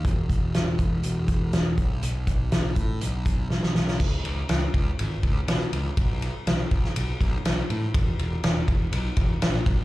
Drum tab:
CC |----------------|----------------|x---------------|----------------|
RD |----------------|----------------|--x-x-x-x-x-x-x-|x-x-x-x-x-x-x-x-|
HH |x-x-x-x-x-x-x-x-|x-x-x-x-x-x-----|----------------|----------------|
SD |----o-------o---|----o-------oooo|----o-------o---|----o--o----o---|
BD |o-o---o---o---o-|--o---o---o-----|o-----o---o-----|o-----o---o-----|

CC |----------------|
RD |x-x-x-x-x-x-x-x-|
HH |----------------|
SD |----o-------o---|
BD |o-----o---o---o-|